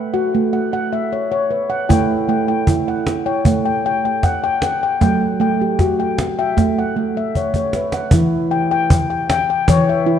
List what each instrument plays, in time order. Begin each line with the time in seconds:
Already playing: handpan B4
0.14 handpan F#4 F#5
0.35 handpan A3
0.53 handpan F#5
0.73 handpan F#5
0.93 handpan E5
1.13 handpan C#5
1.32 handpan C#5
1.51 handpan B4
1.70 handpan F#5
1.89 handpan A3 E4 G5, cajon bass
2.28 handpan A3 G5, cajon slap
2.48 handpan G5
2.67 handpan E4, cajon bass
2.88 handpan F#5
3.07 cajon slap
3.26 handpan C#5 G5
3.45 handpan A3, cajon bass
3.65 handpan G5
3.86 handpan G5
4.05 handpan G5
4.23 handpan F#5, cajon bass, cajon slap
4.44 handpan G5
4.62 handpan F#5, cajon slap
4.83 handpan G5
5.01 handpan F#3 A3 G5, cajon bass, cajon slap
5.22 cajon slap
5.40 handpan A3 G5
5.61 handpan G4
5.79 handpan F#4, cajon bass, cajon slap
6.00 handpan G5
6.18 cajon slap
6.39 handpan E5 G5
6.57 handpan A3, cajon bass, cajon slap
6.79 handpan F#5
6.96 handpan A3
7.17 handpan E5
7.35 handpan C#5, cajon bass
7.54 handpan C#5, cajon bass
7.73 handpan B4, cajon slap
7.92 handpan F#5, cajon slap
8.11 handpan E3 E4, cajon bass
8.51 handpan G5
8.71 handpan G5
8.90 cajon bass
9.10 handpan G5
9.30 handpan G5, cajon slap
9.50 handpan G5
9.68 handpan E3 C#5, cajon bass
9.89 handpan E5
10.06 handpan E4